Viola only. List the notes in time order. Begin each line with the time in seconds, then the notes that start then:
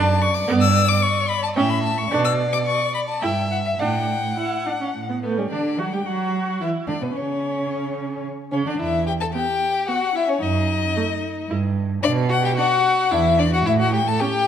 Already playing: D4
0.47 B3
1.56 C#4
2.11 D4
3.22 E4
3.79 D4
4.37 E4
4.66 D4
4.81 C#4
5.09 B3
5.23 A3
5.38 G3
5.51 D4
5.79 F#4
5.93 G4
6.07 F#4
6.61 E4
6.88 D4
7.02 B3
7.15 C#4
8.52 C#4
8.67 D4
9.34 B3
9.88 B3
10.96 A3
11.50 E4
12.57 D4
13.12 D4
14.21 C#4